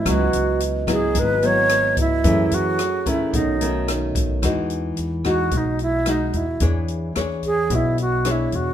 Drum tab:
HH |xxxxxxxx|xxxxxxxx|xxxxxxxx|xxxxxxxx|
SD |r--r--r-|--r---r-|r--r--r-|--r---r-|
BD |o--oo--o|o--oo--o|o--oo--o|o--oo--o|